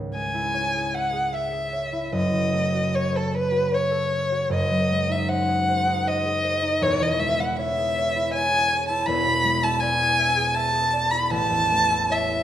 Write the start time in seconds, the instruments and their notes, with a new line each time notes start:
Already playing: harp C#2 G#2 G#4
0.15 harp G#3, violin G#5
0.34 harp E4
0.54 harp C#5
0.75 harp G#4
0.94 harp E5, violin F#5
1.13 harp G#4
1.33 harp E5, violin E5
1.52 harp G#4
1.72 harp C#5
1.93 harp E4
2.12 harp F#1 F#2, violin D#5
2.33 harp C#3
2.54 harp A3
2.75 harp F#4
2.94 harp C#5, violin C#5
3.12 harp A4, violin A4
3.33 violin B4, harp C#5
3.52 harp F#4
3.72 harp C#5, violin C#5
3.91 harp A4
4.11 harp C#5
4.32 harp F#4
4.49 harp F#1 F#2
4.54 violin D#5
4.71 harp F#3
4.91 harp G#3
5.09 harp D#4, violin E5
5.28 harp C5, violin F#5
5.48 harp G#4
5.68 harp C5
5.87 harp D#4
6.07 harp C5, violin D#5
6.25 harp G#4
6.44 harp C5
6.63 harp D#4
6.81 harp E1 E2, violin C#5
7.00 harp E3, violin D#5
7.19 harp G#3, violin E5
7.39 harp E4, violin F#5
7.57 harp C#5, violin E5
7.78 harp G#4
7.98 harp C#5
8.16 harp E4
8.34 harp C#5, violin G#5
8.53 harp G#4
8.71 harp C#5
8.89 harp E4, violin A5
9.06 harp E1 E2, violin B5
9.26 harp B2
9.44 harp G#3
9.62 harp E4, violin A5
9.80 harp D5, violin G#5
10.00 harp G#4
10.19 harp E5
10.36 harp G#4
10.55 harp E5, violin A5
10.74 harp G#4
10.93 harp D5
11.11 harp E4, violin B5
11.30 harp A1, violin A5
11.50 harp E2
11.71 harp A3
11.91 harp E4
12.09 harp C#5, violin E5
12.30 harp A4